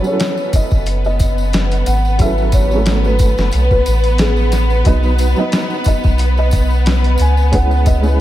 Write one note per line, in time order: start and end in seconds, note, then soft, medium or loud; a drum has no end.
0.00 0.02 F#3 medium
0.00 2.15 F#3 medium
0.00 8.21 B3 medium
0.00 0.04 C#4 medium
0.00 2.16 C#4 medium
0.00 0.07 E4 medium
0.00 0.09 A4 medium
0.00 8.21 B4 medium
0.04 2.17 E4 medium
0.04 0.49 C#5 medium
0.04 tambourine soft
0.09 2.18 A4 medium
0.20 snare loud
0.20 closed hi-hat medium
0.20 tambourine medium
0.37 tambourine soft
0.53 1.00 D#5 medium
0.53 kick medium
0.53 closed hi-hat medium
0.53 tambourine medium
0.71 1.83 F#1 loud
0.71 kick medium
0.71 tambourine soft
0.86 closed hi-hat medium
0.86 tambourine soft
1.04 1.49 D#5 medium
1.04 tambourine soft
1.19 kick medium
1.19 closed hi-hat medium
1.19 tambourine medium
1.38 tambourine soft
1.53 snare loud
1.53 closed hi-hat medium
1.53 tambourine soft
1.71 closed hi-hat soft
1.71 tambourine soft
1.86 3.34 G#1 medium
1.86 2.17 F#5 medium
1.86 closed hi-hat medium
1.86 tambourine medium
2.05 tambourine soft
2.18 2.66 F#3 medium
2.18 2.67 C#4 medium
2.18 2.67 E4 medium
2.18 2.68 A4 medium
2.18 2.51 E5 medium
2.18 kick loud
2.18 closed hi-hat medium
2.18 tambourine soft
2.38 tambourine soft
2.52 2.99 C#5 medium
2.52 kick medium
2.52 closed hi-hat medium
2.52 tambourine medium
2.69 4.81 F#3 medium
2.69 4.82 C#4 medium
2.69 tambourine soft
2.73 4.85 A3 medium
2.73 4.84 E4 medium
2.86 snare loud
2.86 closed hi-hat medium
2.86 tambourine medium
3.04 3.64 B4 medium
3.04 tambourine soft
3.19 kick medium
3.19 closed hi-hat medium
3.19 tambourine medium
3.37 3.51 F#1 loud
3.37 snare medium
3.37 tambourine soft
3.51 3.83 B1 medium
3.51 closed hi-hat medium
3.51 tambourine soft
3.71 4.15 B4 medium
3.71 kick medium
3.71 tambourine soft
3.86 4.83 A1 loud
3.86 closed hi-hat medium
3.86 tambourine medium
4.04 closed hi-hat soft
4.04 tambourine soft
4.18 4.50 G#4 medium
4.18 snare loud
4.18 closed hi-hat medium
4.18 tambourine soft
4.36 tambourine soft
4.52 snare soft
4.52 closed hi-hat medium
4.52 tambourine medium
4.70 tambourine soft
4.84 5.34 B1 loud
4.84 5.32 F#3 medium
4.84 5.33 B3 medium
4.84 5.33 D#4 medium
4.84 5.34 B4 medium
4.84 5.32 D#5 loud
4.84 kick loud
4.84 closed hi-hat medium
4.84 tambourine soft
5.03 tambourine soft
5.18 closed hi-hat medium
5.18 tambourine medium
5.35 7.48 F#3 medium
5.35 7.49 B3 medium
5.35 tambourine soft
5.39 7.50 D#4 medium
5.39 7.51 B4 medium
5.39 5.82 D#5 medium
5.52 snare loud
5.52 closed hi-hat medium
5.52 tambourine soft
5.70 tambourine soft
5.84 6.33 D#5 medium
5.84 kick medium
5.84 closed hi-hat medium
5.84 tambourine medium
6.03 7.17 B1 medium
6.03 kick medium
6.03 tambourine soft
6.18 closed hi-hat medium
6.18 tambourine medium
6.37 6.82 D#5 medium
6.37 tambourine soft
6.51 kick medium
6.51 closed hi-hat medium
6.51 tambourine medium
6.70 tambourine soft
6.86 snare loud
6.86 closed hi-hat medium
6.86 tambourine soft
7.04 closed hi-hat soft
7.04 tambourine soft
7.18 8.21 C#2 loud
7.18 7.51 G#5 medium
7.18 closed hi-hat medium
7.18 tambourine medium
7.37 tambourine soft
7.51 7.99 G#3 medium
7.51 8.00 C#4 medium
7.51 8.00 E4 medium
7.51 8.01 B4 medium
7.51 7.84 F#5 medium
7.51 kick loud
7.51 closed hi-hat medium
7.51 tambourine soft
7.71 tambourine soft
7.86 8.21 D#5 medium
7.86 kick medium
7.86 closed hi-hat medium
7.86 tambourine medium
8.01 8.21 G#3 medium
8.01 8.21 C#4 medium
8.01 tambourine soft
8.05 8.21 E4 medium
8.05 8.21 B4 medium